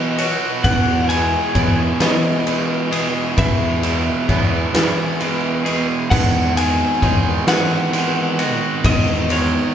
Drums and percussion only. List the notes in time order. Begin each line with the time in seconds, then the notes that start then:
0.18 ride
0.64 kick, ride
1.10 ride
1.55 kick, ride
2.00 snare, ride
2.47 ride
2.92 ride
3.38 kick, ride
3.83 ride
4.29 kick, ride
4.75 snare, ride
5.21 ride
5.66 ride
6.11 kick, crash
6.57 ride
7.02 kick, ride
7.48 snare, ride
7.93 ride
8.39 ride
8.84 kick, ride
9.30 ride